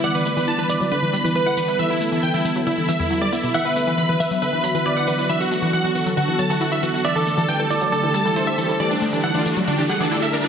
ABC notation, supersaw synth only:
X:1
M:4/4
L:1/16
Q:1/4=137
K:Em
V:1 name="Supersaw synth"
f B B B a B B z B B b B B f B B | e E E E g E E z E E e E E d E E | f B B B b B B z B B b B B f B B | e F F F f F F z F F a F F e F F |
e A A A g A A z A A a A A e A A | d D D D f D D z D D f D D e D D |]